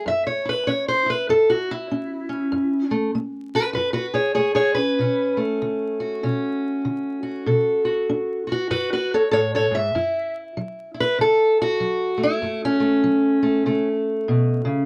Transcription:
0.00 0.45 A3 soft
0.06 0.63 F#2 medium
0.06 0.26 E5 medium
0.27 0.47 C#5 medium
0.45 1.06 E4 soft
0.45 0.69 B4 medium
0.67 1.25 C#4 medium
0.67 0.88 C#5 medium
0.88 1.09 C5 medium
1.06 1.70 E4 soft
1.06 1.29 B4 medium
1.29 1.86 F#2 medium
1.29 1.50 A4 medium
1.50 1.70 F#4 medium
1.71 2.95 E4 medium
1.91 2.28 C#4 medium
2.29 2.91 C#4 soft
2.52 3.09 F#2 medium
2.91 3.14 A3 soft
3.15 3.72 A3 medium
3.55 3.64 F#4 medium
3.55 3.73 B4 medium
3.73 4.33 F#2 medium
3.73 3.81 F#4 medium
3.73 3.93 B4 medium
3.93 4.05 F#4 medium
3.93 4.16 B4 medium
4.14 4.33 G#4 medium
4.14 4.34 C#5 medium
4.35 4.95 A3 medium
4.35 4.54 G#4 medium
4.35 4.54 C#5 medium
4.55 4.78 G#4 medium
4.55 4.74 C#5 loud
4.75 5.00 C#4 soft
4.75 5.39 B4 medium
4.99 5.57 B2 medium
4.99 6.23 C#4 soft
5.37 7.84 A3 soft
5.62 6.19 D3 medium
6.00 7.22 F#4 soft
6.23 6.81 B2 medium
6.23 7.47 C#4 soft
6.85 7.42 D3 medium
7.23 7.85 F#4 soft
7.46 8.04 B2 medium
7.46 8.51 A4 soft
7.85 8.47 F#4 soft
8.09 8.67 D4 medium
8.47 8.52 F#4 soft
8.51 8.69 F#4 medium
8.51 8.70 B4 loud
8.70 9.28 F#2 medium
8.70 8.92 F#4 medium
8.70 8.92 B4 medium
8.93 9.13 F#4 medium
8.93 9.13 B4 medium
9.14 9.22 A4 medium
9.14 9.31 C#5 medium
9.31 9.71 A2 medium
9.31 9.39 A4 medium
9.31 9.54 C#5 medium
9.55 9.65 A4 medium
9.55 9.76 C#5 loud
9.71 9.94 G#2 medium
9.71 10.37 E5 loud
9.95 10.52 F#2 medium
9.95 10.94 E4 medium
10.57 11.14 F#3 medium
10.94 12.22 E4 soft
11.00 11.20 B4 loud
11.18 11.76 C#3 medium
11.18 11.61 A4 loud
11.62 12.23 F#4 loud
11.80 12.37 F#3 medium
12.17 12.42 A3 soft
12.23 12.64 E4 loud
12.42 12.99 F#2 medium
12.42 12.80 A3 soft
12.65 13.88 C#4 loud
12.80 13.42 A3 medium
13.04 13.61 F#3 medium
13.43 13.66 A3 medium
13.66 14.23 C#3 medium
13.66 14.86 A3 medium
14.28 14.64 B2 medium
14.65 14.86 C#3 medium

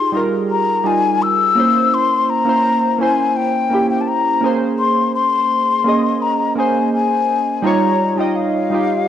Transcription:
0.00 0.14 D#4 medium
0.00 0.15 F4 medium
0.00 1.59 G4 loud
0.00 1.59 G#4 loud
0.00 0.20 C6 loud
0.12 0.58 G3 medium
0.12 0.59 D#4 medium
0.12 0.60 F4 medium
0.17 0.60 A#4 medium
0.51 0.88 A#5 loud
0.84 1.52 G3 medium
0.84 1.53 D#4 medium
0.84 1.54 F4 medium
0.84 1.24 G#5 medium
1.22 1.95 E6 loud
1.55 2.28 A#3 medium
1.55 2.28 C#4 medium
1.55 2.29 E4 medium
1.60 2.30 C5 medium
1.94 2.31 C6 loud
2.30 3.03 A#5 loud
2.45 2.79 A#3 medium
2.45 2.80 C#4 medium
2.45 2.81 E4 medium
2.49 2.81 C5 medium
2.98 3.44 A#3 medium
2.98 3.45 C#4 medium
2.98 3.45 E4 medium
2.98 3.38 G#5 medium
3.02 3.46 C5 medium
3.36 3.90 G5 medium
3.70 4.16 A#3 medium
3.70 4.16 C#4 medium
3.70 4.17 E4 medium
3.74 4.18 G4 medium
3.90 4.02 G5 medium
4.01 4.09 A5 medium
4.08 4.52 A#5 medium
4.41 5.56 A#3 medium
4.41 5.57 C#4 medium
4.41 5.58 G#4 medium
4.46 5.59 C5 medium
4.79 5.12 C6 loud
5.15 6.23 C6 loud
5.84 6.30 A#3 medium
5.84 6.31 C#4 medium
5.84 6.31 G#4 medium
5.88 6.32 D#5 medium
6.22 6.57 A#5 medium
6.55 7.24 A#3 medium
6.55 7.24 C#4 medium
6.55 7.25 G#4 medium
6.55 6.90 G#5 medium
6.60 7.26 C5 medium
6.93 7.66 G#5 loud
7.62 7.97 G3 loud
7.62 7.98 D#4 medium
7.62 7.98 F4 medium
7.62 8.20 A#5 medium
7.67 7.99 C#5 loud
8.16 8.51 G3 medium
8.16 8.51 D#4 medium
8.16 8.52 F4 medium
8.16 8.37 G5 medium
8.20 8.53 D#5 medium
8.36 9.08 F5 medium
8.70 9.08 G3 medium
8.70 9.08 D#4 medium
8.70 9.08 F4 medium
8.74 9.08 G4 medium

